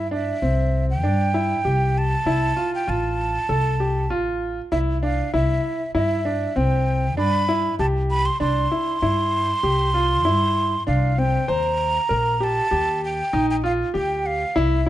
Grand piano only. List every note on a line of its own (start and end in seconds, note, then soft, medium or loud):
0.11 0.35 D4 medium
0.42 0.90 C4 medium
1.03 1.27 D4 medium
1.34 1.58 E4 medium
1.65 2.12 G4 medium
2.26 2.50 E4 medium
2.57 2.80 F4 medium
2.87 3.35 F4 medium
3.49 3.73 A4 medium
3.80 4.04 G4 medium
4.10 4.58 F4 medium
4.72 4.96 E4 medium
5.03 5.26 D4 medium
5.34 5.81 E4 medium
5.95 6.19 E4 medium
6.25 6.49 D4 medium
6.56 7.04 C4 medium
7.17 7.41 D4 medium
7.49 7.72 E4 medium
7.79 8.27 G4 medium
8.40 8.64 D4 medium
8.72 8.95 E4 medium
9.02 9.50 E4 medium
9.63 9.87 G4 medium
9.94 10.18 F4 medium
10.25 10.73 E4 medium
10.87 11.11 D4 medium
11.18 11.42 C4 medium
11.48 11.96 C5 medium
12.09 12.33 A#4 medium
12.40 12.64 G4 medium
12.71 13.19 G4 medium
13.33 13.57 D#4 medium
13.64 13.87 F4 medium
13.94 14.41 G4 medium
14.56 14.79 E4 medium